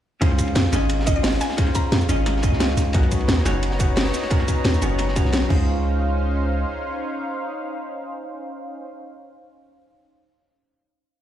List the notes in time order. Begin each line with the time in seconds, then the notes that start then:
0.21 C#2 C#4 D#4 F4 G#4 C5, kick, closed hi-hat, ride
0.31 snare
0.38 kick, closed hi-hat, ride, cabasa
0.48 ride
0.55 F2, snare, closed hi-hat, ride
0.64 snare
0.72 G#1 C#4 D#4 F4 G#4 D#5, snare, closed hi-hat, ride, cabasa
0.89 closed hi-hat, ride
1.00 snare
1.06 C#4 D#4 F4 G#4 D#5, kick, closed hi-hat, ride, cabasa
1.16 D#5
1.23 snare, closed hi-hat, open hi-hat, cabasa
1.33 snare
1.41 G#5, snare, closed hi-hat, ride, cabasa
1.50 snare
1.57 C#4 D#4 F4 G#4 C5, kick, closed hi-hat, ride
1.67 snare
1.75 A#5, kick, closed hi-hat, ride, cabasa
1.92 F2, snare, closed hi-hat, ride
2.01 cabasa
2.09 G#1 C#4 D#4 F4 G#4 D#5, closed hi-hat, ride, cabasa
2.26 snare, closed hi-hat, ride
2.36 snare
2.42 C#4 D#4 F4 G#4 D#5, kick, closed hi-hat, ride, cabasa
2.52 C#2, snare
2.60 snare, closed hi-hat, ride, cabasa
2.77 C#2, snare, closed hi-hat, ride, cabasa
2.93 B1 B3 C#4 D#4 F#4 A#4 C#5 A#5, kick, closed hi-hat, ride
3.03 snare
3.12 kick, closed hi-hat, ride, cabasa
3.21 ride
3.28 D#2, snare, closed hi-hat, ride
3.37 snare
3.45 F#1 B3 C#4 D#4 F#4 C#5, snare, closed hi-hat, ride, cabasa
3.63 closed hi-hat, ride
3.71 snare
3.79 B3 C#4 D#4 F#4 C#5, kick, closed hi-hat, ride, cabasa
3.96 snare, closed hi-hat, open hi-hat, cabasa
4.05 snare
4.13 snare, closed hi-hat, ride, cabasa
4.22 snare
4.30 B3 C#4 D#4 F#4 A#4, kick, closed hi-hat, ride
4.40 snare
4.48 kick, closed hi-hat, ride, cabasa
4.64 D#2, snare, closed hi-hat, ride
4.74 cabasa
4.82 F#1 B3 C#4 D#4 F#4 C#5, closed hi-hat, ride, cabasa
4.98 snare, closed hi-hat, ride
5.08 snare
5.15 B3 C#4 D#4 F#4 C#5, kick, closed hi-hat, ride, cabasa
5.25 B1, snare
5.32 snare, closed hi-hat, ride, cabasa
5.49 C#2 C#4 D#4 F4 G#4 C5 F5, kick, crash